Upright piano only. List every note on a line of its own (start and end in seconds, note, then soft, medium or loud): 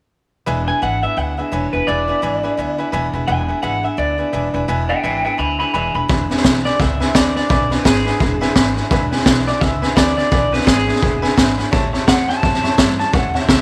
0.46 0.60 B4 loud
0.46 0.60 E5 loud
0.46 0.60 G#5 loud
0.67 0.76 B4 medium
0.67 0.77 E5 medium
0.67 0.77 G#5 medium
0.82 0.95 B4 medium
0.82 0.95 E5 medium
0.82 0.95 G#5 loud
1.03 1.12 B4 medium
1.03 1.12 E5 medium
1.03 1.12 G#5 medium
1.17 1.30 B4 medium
1.17 1.30 E5 medium
1.17 1.31 G#5 medium
1.38 1.47 B4 medium
1.38 1.47 E5 medium
1.38 1.48 G#5 medium
1.52 1.65 B4 medium
1.52 1.65 E5 medium
1.52 1.66 G#5 loud
1.73 1.82 B4 medium
1.73 1.82 E5 medium
1.73 1.83 G#5 medium
1.87 2.00 B4 medium
1.87 2.00 E5 medium
1.87 2.01 G#5 loud
2.08 2.17 B4 medium
2.08 2.17 E5 medium
2.08 2.17 G#5 medium
2.22 2.35 B4 medium
2.22 2.35 E5 medium
2.22 2.36 G#5 loud
2.44 2.52 B4 medium
2.44 2.52 E5 medium
2.44 2.53 G#5 loud
2.58 2.70 B4 medium
2.58 2.71 E5 medium
2.58 2.71 G#5 loud
2.78 2.87 B4 medium
2.78 2.88 E5 medium
2.78 2.88 G#5 medium
2.92 3.05 B4 loud
2.92 3.06 E5 loud
2.92 3.06 G#5 loud
3.13 3.22 B4 medium
3.13 3.23 E5 medium
3.13 3.23 G#5 medium
3.28 3.40 B4 medium
3.28 3.41 E5 medium
3.28 3.41 G#5 loud
3.48 3.57 B4 medium
3.48 3.58 E5 medium
3.48 3.58 G#5 medium
3.62 3.75 B4 loud
3.62 3.76 E5 medium
3.62 3.76 G#5 loud
3.83 3.92 B4 medium
3.83 3.93 E5 medium
3.83 3.93 G#5 medium
3.98 4.11 B4 medium
3.98 4.11 E5 medium
3.98 4.11 G#5 medium
4.19 4.28 B4 medium
4.19 4.28 E5 medium
4.19 4.28 G#5 medium
4.32 4.46 B4 medium
4.32 4.46 E5 medium
4.32 4.46 G#5 loud
4.53 4.63 B4 medium
4.53 4.63 E5 medium
4.53 4.63 G#5 medium
4.68 4.81 B4 loud
4.68 4.81 E5 loud
4.68 4.82 G#5 loud
4.89 4.98 B4 medium
4.89 4.98 E5 medium
4.89 4.98 G#5 medium
5.03 5.16 B4 loud
5.03 5.16 E5 medium
5.03 5.17 G#5 loud
5.24 5.33 B4 medium
5.24 5.34 E5 medium
5.24 5.34 G#5 medium
5.39 5.51 B4 medium
5.39 5.52 E5 medium
5.39 5.52 G#5 medium
5.60 5.69 B4 medium
5.60 5.69 E5 medium
5.60 5.69 G#5 medium
5.74 5.87 B4 medium
5.74 5.87 E5 medium
5.74 5.87 G#5 loud
5.95 6.04 B4 medium
5.95 6.04 E5 medium
5.95 6.04 G#5 medium
6.10 6.22 B4 medium
6.10 6.22 E5 medium
6.10 6.23 G#5 loud
6.31 6.39 B4 medium
6.31 6.40 E5 medium
6.31 6.40 G#5 loud
6.45 6.57 B4 medium
6.45 6.57 E5 medium
6.45 6.58 G#5 medium
6.65 6.74 B4 medium
6.65 6.74 E5 medium
6.65 6.75 G#5 medium
6.80 6.92 B4 medium
6.80 6.93 E5 medium
6.80 6.93 G#5 medium
7.00 7.09 B4 loud
7.00 7.09 E5 medium
7.00 7.10 G#5 loud
7.14 7.27 B4 loud
7.14 7.28 E5 medium
7.14 7.28 G#5 loud
7.36 7.44 B4 medium
7.36 7.45 E5 medium
7.36 7.45 G#5 medium
7.50 7.63 B4 medium
7.50 7.63 E5 medium
7.50 7.63 G#5 loud
7.71 7.80 B4 medium
7.71 7.80 E5 medium
7.71 7.80 G#5 medium
7.85 7.98 B4 medium
7.85 7.98 E5 medium
7.85 7.99 G#5 medium
8.06 8.15 B4 medium
8.06 8.15 E5 medium
8.06 8.15 G#5 medium
8.20 8.33 B4 medium
8.20 8.33 E5 medium
8.20 8.34 G#5 medium
8.41 8.50 B4 loud
8.41 8.50 E5 loud
8.41 8.51 G#5 loud
8.55 8.68 B4 loud
8.55 8.69 E5 loud
8.55 8.69 G#5 loud
8.76 8.85 B4 medium
8.76 8.85 E5 medium
8.76 8.86 G#5 loud
8.91 9.03 B4 loud
8.91 9.04 E5 loud
8.91 9.04 G#5 loud
9.11 9.20 B4 medium
9.11 9.21 E5 medium
9.11 9.21 G#5 loud
9.26 9.39 B4 medium
9.26 9.39 E5 medium
9.26 9.39 G#5 loud
9.46 9.55 B4 medium
9.46 9.56 E5 medium
9.46 9.56 G#5 medium
9.61 9.74 B4 medium
9.61 9.74 E5 medium
9.61 9.75 G#5 medium
9.82 9.91 B4 loud
9.82 9.91 E5 loud
9.82 9.91 G#5 loud
9.96 10.09 B4 loud
9.96 10.09 E5 medium
9.96 10.10 G#5 loud
10.17 10.26 B4 medium
10.17 10.26 E5 medium
10.17 10.26 G#5 medium
10.31 10.44 B4 loud
10.31 10.44 E5 medium
10.31 10.45 G#5 loud
10.52 10.61 B4 medium
10.52 10.61 E5 medium
10.52 10.62 G#5 medium
10.67 10.80 B4 medium
10.67 10.80 E5 medium
10.67 10.80 G#5 medium
10.87 10.96 B4 medium
10.87 10.97 E5 medium
10.87 10.97 G#5 medium
11.02 11.15 B4 medium
11.02 11.15 E5 medium
11.02 11.15 G#5 medium
11.22 11.31 B4 loud
11.22 11.32 E5 loud
11.22 11.32 G#5 loud
11.36 11.50 B4 loud
11.36 11.50 E5 loud
11.36 11.50 G#5 loud
11.57 11.66 B4 medium
11.57 11.67 E5 medium
11.57 11.67 G#5 loud
11.71 11.85 C#5 loud
11.71 11.85 E5 loud
11.71 11.85 A5 loud
11.92 12.02 C#5 medium
11.92 12.02 E5 medium
11.92 12.02 A5 loud
12.07 12.20 C#5 medium
12.07 12.20 E5 medium
12.28 12.37 C#5 medium
12.28 12.37 E5 medium
12.28 12.38 A5 medium
12.42 12.55 C#5 medium
12.42 12.56 E5 medium
12.42 12.56 A5 medium
12.63 12.72 C#5 loud
12.63 12.72 E5 medium
12.63 12.73 A5 loud
12.78 12.91 C#5 loud
12.78 12.91 E5 loud
12.78 12.91 A5 loud
12.99 13.08 C#5 medium
12.99 13.08 E5 medium
12.99 13.08 A5 medium
13.13 13.26 C#5 loud
13.13 13.26 E5 medium
13.13 13.26 A5 loud
13.34 13.43 C#5 medium
13.34 13.43 E5 medium
13.34 13.43 A5 medium
13.48 13.61 C#5 medium
13.48 13.61 E5 medium
13.48 13.62 A5 medium